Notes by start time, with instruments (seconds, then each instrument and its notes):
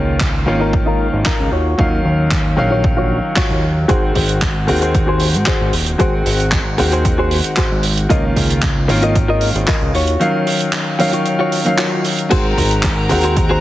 Already playing: analog synth bass C#2, grand piano D#3 A#3 C#4 F4
0.20 kick, clap
0.46 analog synth bass G#1, grand piano D#3 A#3 C#4 F4, muted clean electric guitar stroke
0.60 clean electric guitar D#4 F4 A#4
0.73 kick
0.86 clean electric guitar D#4 F4 A#4
1.13 analog synth bass G#1
1.25 clean electric guitar D#4 F4 A#4, kick, clap
1.40 analog synth bass C#2
1.51 analog synth bass D#2, clean electric guitar F4 F#4 C#5
1.78 analog synth bass D#2, grand piano D#3 F#3 C#4 F5, kick
2.04 analog synth bass D#2, muted clean electric guitar stroke
2.31 kick, clap
2.57 analog synth bass A#1, grand piano D#3 F#3 C#4 F5, muted clean electric guitar stroke
2.70 clean electric guitar F4 F#4 C#5
2.84 kick
2.97 clean electric guitar F4 F#4 C#5
3.36 clean electric guitar F4 F#4 C#5, kick, clap
3.50 analog synth bass D#2
3.88 analog synth bass G#1, grand piano D#3 G#3 C4 F#4, clean electric guitar F#4 G#4 C5, kick, closed hi-hat
4.15 analog synth bass G#1, muted clean electric guitar stroke, kick, open hi-hat
4.29 closed hi-hat
4.42 kick, clap, closed hi-hat
4.67 analog synth bass D#2, grand piano D#3 G#3 C4 F#4, muted clean electric guitar stroke, open hi-hat
4.81 clean electric guitar F#4 G#4 C5, closed hi-hat
4.95 kick, closed hi-hat
5.07 clean electric guitar F#4 G#4 C5
5.20 open hi-hat
5.34 analog synth bass G#2, closed hi-hat
5.46 clean electric guitar F#4 G#4 C5, kick, clap, closed hi-hat
5.61 analog synth bass G#1
5.73 analog synth bass D#1, open hi-hat
5.86 closed hi-hat
5.99 analog synth bass G#1, grand piano D#3 G#3 C4 F#4, clean electric guitar F#4 G#4 C5, kick, closed hi-hat
6.25 analog synth bass G#1, muted clean electric guitar stroke, open hi-hat
6.40 closed hi-hat
6.52 kick, clap, closed hi-hat
6.78 analog synth bass D#2, grand piano D#3 G#3 C4 F#4, muted clean electric guitar stroke, open hi-hat
6.92 clean electric guitar F#4 G#4 C5, closed hi-hat
7.05 kick, closed hi-hat
7.18 clean electric guitar F#4 G#4 C5
7.31 open hi-hat
7.44 closed hi-hat
7.57 clean electric guitar F#4 G#4 C5, kick, clap, closed hi-hat
7.71 analog synth bass G#1
7.83 open hi-hat
7.97 closed hi-hat
8.09 analog synth bass C#2, grand piano D#3 A#3 C#4 F4, clean electric guitar F4 A#4 D#5, kick, closed hi-hat
8.36 analog synth bass C#2, muted clean electric guitar stroke, kick, open hi-hat
8.50 closed hi-hat
8.62 kick, clap, closed hi-hat
8.88 analog synth bass G#1, grand piano D#3 A#3 C#4 F4, muted clean electric guitar stroke, open hi-hat
9.02 clean electric guitar F4 A#4 D#5, closed hi-hat
9.15 kick, closed hi-hat
9.28 clean electric guitar F4 A#4 D#5
9.41 open hi-hat
9.55 analog synth bass G#1, closed hi-hat
9.67 clean electric guitar F4 A#4 D#5, kick, clap, closed hi-hat
9.82 analog synth bass C#2
9.94 analog synth bass D#2, clean electric guitar F4 F#4 C#5, open hi-hat
10.08 closed hi-hat
10.20 grand piano D#3 F#3 C#4 F5, closed hi-hat
10.46 muted clean electric guitar stroke, open hi-hat
10.60 closed hi-hat
10.73 clap, closed hi-hat
10.99 grand piano D#3 F#3 C#4 F5, muted clean electric guitar stroke, open hi-hat
11.12 clean electric guitar F4 F#4 C#5, closed hi-hat
11.26 closed hi-hat
11.39 clean electric guitar F4 F#4 C#5
11.52 open hi-hat
11.65 grand piano D#3 F#3 C#4 F5, closed hi-hat
11.78 clean electric guitar F4 F#4 C#5, clap, closed hi-hat
12.05 open hi-hat
12.18 closed hi-hat
12.30 analog synth bass G#1, grand piano D#3 G#3 C4 F#4, clean electric guitar F#4 G#4 C5, string section A#4 A#5, kick, closed hi-hat, crash
12.57 analog synth bass G#1, muted clean electric guitar stroke, kick, open hi-hat
12.71 closed hi-hat
12.83 kick, clap, closed hi-hat
13.09 analog synth bass D#2, grand piano D#3 G#3 C4 F#4, muted clean electric guitar stroke, open hi-hat
13.23 clean electric guitar F#4 G#4 C5, closed hi-hat
13.37 kick, closed hi-hat
13.49 clean electric guitar F#4 G#4 C5